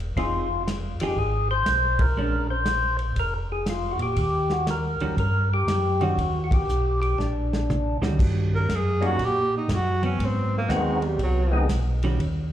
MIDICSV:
0, 0, Header, 1, 6, 480
1, 0, Start_track
1, 0, Tempo, 501253
1, 161, Time_signature, 4, 2, 24, 8
1, 11992, End_track
2, 0, Start_track
2, 0, Title_t, "Tonewheel organ"
2, 0, Program_c, 0, 16
2, 162, Note_on_c, 0, 65, 91
2, 607, Note_off_c, 0, 65, 0
2, 970, Note_on_c, 0, 67, 88
2, 1131, Note_off_c, 0, 67, 0
2, 1136, Note_on_c, 0, 68, 83
2, 1423, Note_off_c, 0, 68, 0
2, 1444, Note_on_c, 0, 72, 117
2, 1925, Note_on_c, 0, 70, 114
2, 1934, Note_off_c, 0, 72, 0
2, 2367, Note_off_c, 0, 70, 0
2, 2398, Note_on_c, 0, 72, 96
2, 2843, Note_off_c, 0, 72, 0
2, 3060, Note_on_c, 0, 70, 88
2, 3197, Note_off_c, 0, 70, 0
2, 3371, Note_on_c, 0, 68, 94
2, 3516, Note_off_c, 0, 68, 0
2, 3539, Note_on_c, 0, 65, 89
2, 3749, Note_on_c, 0, 66, 70
2, 3763, Note_off_c, 0, 65, 0
2, 3836, Note_off_c, 0, 66, 0
2, 3854, Note_on_c, 0, 67, 94
2, 4322, Note_on_c, 0, 66, 79
2, 4339, Note_off_c, 0, 67, 0
2, 4471, Note_off_c, 0, 66, 0
2, 4505, Note_on_c, 0, 70, 86
2, 4939, Note_off_c, 0, 70, 0
2, 4976, Note_on_c, 0, 70, 96
2, 5262, Note_off_c, 0, 70, 0
2, 5301, Note_on_c, 0, 67, 96
2, 5755, Note_on_c, 0, 66, 95
2, 5782, Note_off_c, 0, 67, 0
2, 6119, Note_off_c, 0, 66, 0
2, 6166, Note_on_c, 0, 66, 68
2, 6245, Note_off_c, 0, 66, 0
2, 6255, Note_on_c, 0, 67, 91
2, 6708, Note_off_c, 0, 67, 0
2, 6719, Note_on_c, 0, 67, 89
2, 6880, Note_on_c, 0, 62, 65
2, 6886, Note_off_c, 0, 67, 0
2, 7638, Note_off_c, 0, 62, 0
2, 8625, Note_on_c, 0, 55, 73
2, 8632, Note_on_c, 0, 58, 66
2, 8634, Note_on_c, 0, 61, 73
2, 8637, Note_on_c, 0, 63, 67
2, 8644, Note_on_c, 0, 66, 79
2, 8778, Note_off_c, 0, 55, 0
2, 8781, Note_off_c, 0, 58, 0
2, 8782, Note_off_c, 0, 61, 0
2, 8784, Note_off_c, 0, 63, 0
2, 8787, Note_off_c, 0, 66, 0
2, 10233, Note_on_c, 0, 59, 53
2, 10235, Note_on_c, 0, 56, 62
2, 10241, Note_on_c, 0, 60, 54
2, 10243, Note_on_c, 0, 66, 72
2, 10244, Note_on_c, 0, 63, 59
2, 10522, Note_off_c, 0, 59, 0
2, 10523, Note_off_c, 0, 56, 0
2, 10526, Note_off_c, 0, 60, 0
2, 10527, Note_off_c, 0, 66, 0
2, 10528, Note_off_c, 0, 63, 0
2, 11025, Note_on_c, 0, 59, 57
2, 11027, Note_on_c, 0, 56, 65
2, 11031, Note_on_c, 0, 60, 59
2, 11039, Note_on_c, 0, 63, 57
2, 11043, Note_on_c, 0, 68, 70
2, 11179, Note_off_c, 0, 59, 0
2, 11180, Note_off_c, 0, 56, 0
2, 11182, Note_off_c, 0, 60, 0
2, 11186, Note_off_c, 0, 63, 0
2, 11188, Note_off_c, 0, 68, 0
2, 11992, End_track
3, 0, Start_track
3, 0, Title_t, "Tenor saxophone"
3, 0, Program_c, 1, 66
3, 8188, Note_on_c, 1, 70, 93
3, 8387, Note_on_c, 1, 68, 84
3, 8401, Note_off_c, 1, 70, 0
3, 8678, Note_on_c, 1, 66, 95
3, 8693, Note_off_c, 1, 68, 0
3, 8853, Note_on_c, 1, 67, 101
3, 8867, Note_off_c, 1, 66, 0
3, 9143, Note_off_c, 1, 67, 0
3, 9160, Note_on_c, 1, 63, 74
3, 9331, Note_on_c, 1, 66, 93
3, 9345, Note_off_c, 1, 63, 0
3, 9615, Note_off_c, 1, 66, 0
3, 9621, Note_on_c, 1, 61, 83
3, 9815, Note_on_c, 1, 60, 72
3, 9829, Note_off_c, 1, 61, 0
3, 10105, Note_off_c, 1, 60, 0
3, 10126, Note_on_c, 1, 58, 86
3, 10306, Note_on_c, 1, 56, 77
3, 10320, Note_off_c, 1, 58, 0
3, 10581, Note_on_c, 1, 55, 79
3, 10595, Note_off_c, 1, 56, 0
3, 10733, Note_off_c, 1, 55, 0
3, 10756, Note_on_c, 1, 54, 76
3, 11187, Note_off_c, 1, 54, 0
3, 11992, End_track
4, 0, Start_track
4, 0, Title_t, "Hollow-body jazz guitar"
4, 0, Program_c, 2, 26
4, 166, Note_on_c, 2, 53, 55
4, 169, Note_on_c, 2, 60, 61
4, 174, Note_on_c, 2, 63, 57
4, 178, Note_on_c, 2, 68, 60
4, 448, Note_off_c, 2, 53, 0
4, 450, Note_off_c, 2, 60, 0
4, 452, Note_off_c, 2, 63, 0
4, 454, Note_off_c, 2, 68, 0
4, 971, Note_on_c, 2, 53, 56
4, 984, Note_on_c, 2, 63, 52
4, 986, Note_on_c, 2, 60, 52
4, 989, Note_on_c, 2, 68, 56
4, 1111, Note_off_c, 2, 53, 0
4, 1117, Note_off_c, 2, 63, 0
4, 1119, Note_off_c, 2, 60, 0
4, 1120, Note_off_c, 2, 68, 0
4, 2080, Note_on_c, 2, 56, 54
4, 2092, Note_on_c, 2, 62, 63
4, 2093, Note_on_c, 2, 61, 62
4, 2365, Note_off_c, 2, 56, 0
4, 2371, Note_off_c, 2, 61, 0
4, 2371, Note_off_c, 2, 62, 0
4, 4799, Note_on_c, 2, 51, 52
4, 4802, Note_on_c, 2, 55, 57
4, 4805, Note_on_c, 2, 61, 58
4, 4809, Note_on_c, 2, 66, 55
4, 4944, Note_off_c, 2, 51, 0
4, 4946, Note_off_c, 2, 55, 0
4, 4947, Note_off_c, 2, 61, 0
4, 4949, Note_off_c, 2, 66, 0
4, 5761, Note_on_c, 2, 51, 65
4, 5761, Note_on_c, 2, 55, 69
4, 5770, Note_on_c, 2, 61, 68
4, 5775, Note_on_c, 2, 66, 72
4, 5905, Note_off_c, 2, 51, 0
4, 5905, Note_off_c, 2, 55, 0
4, 5910, Note_off_c, 2, 61, 0
4, 5912, Note_off_c, 2, 66, 0
4, 7677, Note_on_c, 2, 51, 51
4, 7681, Note_on_c, 2, 55, 60
4, 7690, Note_on_c, 2, 61, 54
4, 7693, Note_on_c, 2, 66, 60
4, 8287, Note_off_c, 2, 51, 0
4, 8290, Note_off_c, 2, 55, 0
4, 8294, Note_off_c, 2, 61, 0
4, 8296, Note_off_c, 2, 66, 0
4, 9603, Note_on_c, 2, 54, 64
4, 9610, Note_on_c, 2, 59, 72
4, 9611, Note_on_c, 2, 60, 78
4, 10211, Note_off_c, 2, 54, 0
4, 10215, Note_off_c, 2, 59, 0
4, 10215, Note_off_c, 2, 60, 0
4, 10253, Note_on_c, 2, 54, 53
4, 10253, Note_on_c, 2, 60, 66
4, 10256, Note_on_c, 2, 59, 62
4, 10981, Note_off_c, 2, 54, 0
4, 10981, Note_off_c, 2, 60, 0
4, 10982, Note_off_c, 2, 59, 0
4, 11528, Note_on_c, 2, 55, 69
4, 11530, Note_on_c, 2, 51, 63
4, 11533, Note_on_c, 2, 61, 66
4, 11536, Note_on_c, 2, 66, 70
4, 11670, Note_off_c, 2, 55, 0
4, 11672, Note_off_c, 2, 51, 0
4, 11673, Note_off_c, 2, 61, 0
4, 11675, Note_off_c, 2, 66, 0
4, 11992, End_track
5, 0, Start_track
5, 0, Title_t, "Tonewheel organ"
5, 0, Program_c, 3, 16
5, 0, Note_on_c, 3, 28, 76
5, 122, Note_off_c, 3, 28, 0
5, 153, Note_on_c, 3, 29, 72
5, 915, Note_off_c, 3, 29, 0
5, 947, Note_on_c, 3, 29, 34
5, 1031, Note_off_c, 3, 29, 0
5, 1112, Note_on_c, 3, 32, 82
5, 1562, Note_off_c, 3, 32, 0
5, 1585, Note_on_c, 3, 35, 74
5, 2038, Note_off_c, 3, 35, 0
5, 2068, Note_on_c, 3, 34, 77
5, 2995, Note_off_c, 3, 34, 0
5, 3023, Note_on_c, 3, 29, 85
5, 3789, Note_off_c, 3, 29, 0
5, 3820, Note_on_c, 3, 46, 75
5, 3979, Note_off_c, 3, 46, 0
5, 3987, Note_on_c, 3, 39, 78
5, 4751, Note_off_c, 3, 39, 0
5, 4803, Note_on_c, 3, 39, 40
5, 4883, Note_off_c, 3, 39, 0
5, 4949, Note_on_c, 3, 43, 92
5, 5400, Note_off_c, 3, 43, 0
5, 5424, Note_on_c, 3, 42, 81
5, 5877, Note_off_c, 3, 42, 0
5, 5911, Note_on_c, 3, 39, 85
5, 6361, Note_off_c, 3, 39, 0
5, 6398, Note_on_c, 3, 35, 70
5, 6845, Note_off_c, 3, 35, 0
5, 6881, Note_on_c, 3, 34, 83
5, 7638, Note_off_c, 3, 34, 0
5, 7669, Note_on_c, 3, 38, 66
5, 7824, Note_off_c, 3, 38, 0
5, 7842, Note_on_c, 3, 43, 74
5, 8306, Note_off_c, 3, 43, 0
5, 8315, Note_on_c, 3, 42, 82
5, 8783, Note_off_c, 3, 42, 0
5, 8801, Note_on_c, 3, 46, 79
5, 9266, Note_off_c, 3, 46, 0
5, 9272, Note_on_c, 3, 42, 81
5, 9742, Note_off_c, 3, 42, 0
5, 9753, Note_on_c, 3, 44, 75
5, 10223, Note_off_c, 3, 44, 0
5, 10228, Note_on_c, 3, 39, 83
5, 10701, Note_off_c, 3, 39, 0
5, 10714, Note_on_c, 3, 36, 84
5, 11183, Note_off_c, 3, 36, 0
5, 11192, Note_on_c, 3, 35, 94
5, 11663, Note_off_c, 3, 35, 0
5, 11673, Note_on_c, 3, 39, 80
5, 11992, Note_off_c, 3, 39, 0
5, 11992, End_track
6, 0, Start_track
6, 0, Title_t, "Drums"
6, 1, Note_on_c, 9, 51, 44
6, 96, Note_off_c, 9, 51, 0
6, 158, Note_on_c, 9, 36, 33
6, 165, Note_on_c, 9, 51, 53
6, 254, Note_off_c, 9, 36, 0
6, 261, Note_off_c, 9, 51, 0
6, 647, Note_on_c, 9, 38, 67
6, 649, Note_on_c, 9, 44, 56
6, 649, Note_on_c, 9, 51, 66
6, 743, Note_off_c, 9, 38, 0
6, 745, Note_off_c, 9, 44, 0
6, 745, Note_off_c, 9, 51, 0
6, 957, Note_on_c, 9, 51, 68
6, 1053, Note_off_c, 9, 51, 0
6, 1116, Note_on_c, 9, 36, 31
6, 1212, Note_off_c, 9, 36, 0
6, 1589, Note_on_c, 9, 38, 69
6, 1591, Note_on_c, 9, 44, 61
6, 1591, Note_on_c, 9, 51, 69
6, 1685, Note_off_c, 9, 38, 0
6, 1687, Note_off_c, 9, 44, 0
6, 1687, Note_off_c, 9, 51, 0
6, 1906, Note_on_c, 9, 51, 69
6, 1908, Note_on_c, 9, 36, 86
6, 2002, Note_off_c, 9, 51, 0
6, 2003, Note_off_c, 9, 36, 0
6, 2543, Note_on_c, 9, 38, 69
6, 2545, Note_on_c, 9, 44, 58
6, 2545, Note_on_c, 9, 51, 62
6, 2639, Note_off_c, 9, 38, 0
6, 2640, Note_off_c, 9, 44, 0
6, 2640, Note_off_c, 9, 51, 0
6, 2861, Note_on_c, 9, 51, 46
6, 2957, Note_off_c, 9, 51, 0
6, 3027, Note_on_c, 9, 51, 59
6, 3028, Note_on_c, 9, 36, 30
6, 3123, Note_off_c, 9, 51, 0
6, 3124, Note_off_c, 9, 36, 0
6, 3507, Note_on_c, 9, 38, 67
6, 3509, Note_on_c, 9, 44, 52
6, 3509, Note_on_c, 9, 51, 69
6, 3603, Note_off_c, 9, 38, 0
6, 3605, Note_off_c, 9, 44, 0
6, 3605, Note_off_c, 9, 51, 0
6, 3823, Note_on_c, 9, 51, 44
6, 3919, Note_off_c, 9, 51, 0
6, 3988, Note_on_c, 9, 51, 67
6, 3989, Note_on_c, 9, 36, 33
6, 4084, Note_off_c, 9, 51, 0
6, 4085, Note_off_c, 9, 36, 0
6, 4305, Note_on_c, 9, 38, 46
6, 4401, Note_off_c, 9, 38, 0
6, 4471, Note_on_c, 9, 38, 60
6, 4473, Note_on_c, 9, 44, 54
6, 4473, Note_on_c, 9, 51, 61
6, 4567, Note_off_c, 9, 38, 0
6, 4569, Note_off_c, 9, 44, 0
6, 4569, Note_off_c, 9, 51, 0
6, 4791, Note_on_c, 9, 51, 44
6, 4887, Note_off_c, 9, 51, 0
6, 4953, Note_on_c, 9, 36, 32
6, 4959, Note_on_c, 9, 51, 59
6, 5049, Note_off_c, 9, 36, 0
6, 5055, Note_off_c, 9, 51, 0
6, 5439, Note_on_c, 9, 38, 71
6, 5441, Note_on_c, 9, 44, 57
6, 5441, Note_on_c, 9, 51, 67
6, 5535, Note_off_c, 9, 38, 0
6, 5537, Note_off_c, 9, 44, 0
6, 5537, Note_off_c, 9, 51, 0
6, 5753, Note_on_c, 9, 51, 45
6, 5849, Note_off_c, 9, 51, 0
6, 5916, Note_on_c, 9, 36, 35
6, 5922, Note_on_c, 9, 51, 61
6, 6012, Note_off_c, 9, 36, 0
6, 6018, Note_off_c, 9, 51, 0
6, 6235, Note_on_c, 9, 36, 82
6, 6243, Note_on_c, 9, 51, 72
6, 6331, Note_off_c, 9, 36, 0
6, 6339, Note_off_c, 9, 51, 0
6, 6404, Note_on_c, 9, 44, 63
6, 6500, Note_off_c, 9, 44, 0
6, 6726, Note_on_c, 9, 51, 43
6, 6821, Note_off_c, 9, 51, 0
6, 6892, Note_on_c, 9, 38, 44
6, 6988, Note_off_c, 9, 38, 0
6, 7214, Note_on_c, 9, 38, 66
6, 7310, Note_off_c, 9, 38, 0
6, 7374, Note_on_c, 9, 48, 68
6, 7376, Note_on_c, 9, 44, 55
6, 7470, Note_off_c, 9, 48, 0
6, 7472, Note_off_c, 9, 44, 0
6, 7690, Note_on_c, 9, 38, 82
6, 7785, Note_off_c, 9, 38, 0
6, 7845, Note_on_c, 9, 36, 70
6, 7849, Note_on_c, 9, 49, 75
6, 7940, Note_off_c, 9, 36, 0
6, 7945, Note_off_c, 9, 49, 0
6, 8322, Note_on_c, 9, 36, 17
6, 8324, Note_on_c, 9, 38, 63
6, 8326, Note_on_c, 9, 44, 45
6, 8326, Note_on_c, 9, 51, 58
6, 8417, Note_off_c, 9, 36, 0
6, 8420, Note_off_c, 9, 38, 0
6, 8422, Note_off_c, 9, 44, 0
6, 8422, Note_off_c, 9, 51, 0
6, 8641, Note_on_c, 9, 51, 45
6, 8736, Note_off_c, 9, 51, 0
6, 8800, Note_on_c, 9, 36, 19
6, 8802, Note_on_c, 9, 51, 60
6, 8896, Note_off_c, 9, 36, 0
6, 8898, Note_off_c, 9, 51, 0
6, 9280, Note_on_c, 9, 36, 19
6, 9280, Note_on_c, 9, 38, 68
6, 9282, Note_on_c, 9, 44, 55
6, 9282, Note_on_c, 9, 51, 73
6, 9376, Note_off_c, 9, 36, 0
6, 9376, Note_off_c, 9, 38, 0
6, 9378, Note_off_c, 9, 44, 0
6, 9378, Note_off_c, 9, 51, 0
6, 9603, Note_on_c, 9, 51, 42
6, 9699, Note_off_c, 9, 51, 0
6, 9759, Note_on_c, 9, 36, 25
6, 9768, Note_on_c, 9, 51, 68
6, 9855, Note_off_c, 9, 36, 0
6, 9864, Note_off_c, 9, 51, 0
6, 10236, Note_on_c, 9, 36, 19
6, 10243, Note_on_c, 9, 38, 62
6, 10245, Note_on_c, 9, 44, 55
6, 10245, Note_on_c, 9, 51, 58
6, 10332, Note_off_c, 9, 36, 0
6, 10338, Note_off_c, 9, 38, 0
6, 10340, Note_off_c, 9, 44, 0
6, 10340, Note_off_c, 9, 51, 0
6, 10553, Note_on_c, 9, 51, 44
6, 10649, Note_off_c, 9, 51, 0
6, 10713, Note_on_c, 9, 36, 24
6, 10718, Note_on_c, 9, 51, 57
6, 10809, Note_off_c, 9, 36, 0
6, 10814, Note_off_c, 9, 51, 0
6, 11195, Note_on_c, 9, 36, 19
6, 11196, Note_on_c, 9, 38, 66
6, 11198, Note_on_c, 9, 44, 63
6, 11198, Note_on_c, 9, 51, 70
6, 11291, Note_off_c, 9, 36, 0
6, 11291, Note_off_c, 9, 38, 0
6, 11293, Note_off_c, 9, 44, 0
6, 11293, Note_off_c, 9, 51, 0
6, 11516, Note_on_c, 9, 51, 47
6, 11612, Note_off_c, 9, 51, 0
6, 11675, Note_on_c, 9, 36, 27
6, 11682, Note_on_c, 9, 51, 55
6, 11770, Note_off_c, 9, 36, 0
6, 11777, Note_off_c, 9, 51, 0
6, 11992, End_track
0, 0, End_of_file